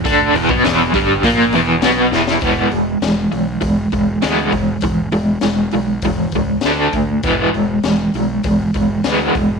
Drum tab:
HH |o-o-o-o-o-o-o---|o-o-o-o-o-o-o-o-|o-o-o-o-o-o-o-o-|o-o-o-o-o-o-o-o-|
SD |----o-------o-oo|----o-------o---|----o-------o---|----o-------o---|
BD |o--o--o-o-------|o-------o-o---o-|o-------o-o---o-|o-------o-o---o-|